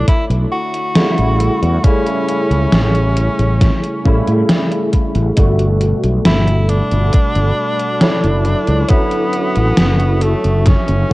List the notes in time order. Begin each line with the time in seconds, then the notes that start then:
Already playing: D3 A3 E4 C#5
0.08 E4, muted fretless electric bass stroke, kick, closed hi-hat
0.30 B1, closed hi-hat
0.52 F#4
0.74 closed hi-hat
0.95 C#3 G3 A3 E4, snare, closed hi-hat
1.18 A1, closed hi-hat
1.40 closed hi-hat
1.63 E2, closed hi-hat
1.83 C#3 G3 A3 C#4 E4, kick, closed hi-hat
2.07 closed hi-hat
2.29 closed hi-hat
2.51 C#2, closed hi-hat
2.73 A1, snare, closed hi-hat
2.95 closed hi-hat
3.17 closed hi-hat
3.39 A1, closed hi-hat
3.61 kick, snare, closed hi-hat
3.83 closed hi-hat
4.04 A1 C#3 G3 A3 E4, kick
4.27 A2, closed hi-hat
4.49 snare, closed hi-hat
4.72 closed hi-hat
4.93 kick, closed hi-hat
5.15 A1, closed hi-hat
5.36 G1 B2 G3 A3 F#4 A4 F#5 B5, kick, closed hi-hat
5.59 closed hi-hat
5.81 closed hi-hat
6.03 B1, closed hi-hat
6.25 G1 E4, snare, closed hi-hat
6.48 closed hi-hat
6.69 D4, closed hi-hat
6.91 G1, closed hi-hat
7.13 kick, closed hi-hat
7.35 G1, closed hi-hat
7.79 closed hi-hat
8.01 D3 F#3 E4 C#5, snare, closed hi-hat
8.24 F#1, closed hi-hat
8.45 F#4 E5 C#6, closed hi-hat
8.67 C#2, closed hi-hat
8.89 D3 F#3 B3 C#4 E4, kick, closed hi-hat
9.11 closed hi-hat
9.33 closed hi-hat
9.55 A1, closed hi-hat
9.77 F#1, snare, closed hi-hat
10.00 closed hi-hat
10.21 A3, closed hi-hat
10.44 F#1, closed hi-hat
10.66 C#4, kick, snare, closed hi-hat
10.88 F#1, closed hi-hat
11.10 D3